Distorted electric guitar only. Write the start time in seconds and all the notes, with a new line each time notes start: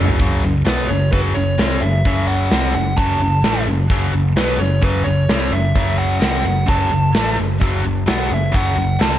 Already playing: F#2 C#3 F#3
0.20 F#2 C#3 F#3
0.44 F#2 C#3
0.65 B2 F#3 B3
0.90 F#2 C#3
1.13 F#2 C#3 F#3
1.36 F#2 C#3
1.58 C3 G3 C4
1.82 F#2 C#3
2.05 F#2 C#3 F#3
2.51 C3 G3 C4
2.74 F#2 C#3
2.97 F#2 C#3 F#3
3.21 F#2 C#3
3.44 A2 E3 A3
3.67 F#2 C#3
3.90 F#2 C#3 F#3
4.12 F#2 C#3
4.36 B2 F#3 B3
4.59 F#2 C#3
4.81 F#2 C#3 F#3
5.06 F#2 C#3
5.29 C3 G3 C4
5.53 F#2 C#3
5.75 F#2 C#3 F#3
6.20 C3 G3 C4
6.45 F#2 C#3
6.66 F#2 C#3 F#3
6.91 F#2 C#3
7.15 A2 E3 A3
7.37 F#2 C#3
7.60 F#2 C#3 F#3
7.83 F#2 C#3
8.06 B2 F#3 B3
8.30 F#2 C#3
8.52 F#2 C#3 F#3
8.76 F#2 C#3
8.99 C3 G3 C4